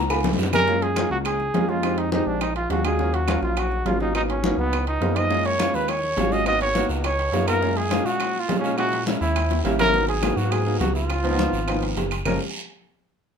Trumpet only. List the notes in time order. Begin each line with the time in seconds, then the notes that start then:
0.54 A#4
0.83 G#4
1.12 F#4
1.26 G#4
1.69 F4
1.99 D#4
2.13 D#4
2.27 D4
2.42 D#4
2.56 F4
2.71 F#4
2.85 G#4
3.14 F#4
3.43 F4
3.58 F#4
3.87 F4
4.01 D#4
4.16 D#4
4.30 C#4
4.59 B3
4.88 D#4
5.17 D#5
5.46 C#5
5.75 B4
5.89 C#5
6.33 D#5
6.48 D#5
6.62 C#5
7.05 C#5
7.48 A#4
7.77 G#4
8.06 F#4
8.40 F4
8.59 C#4
8.78 F#4
9.21 E4
9.79 A#4
10.08 G#4
10.37 F#4
10.52 G#4
10.80 F#4
10.95 F4
12.26 A#4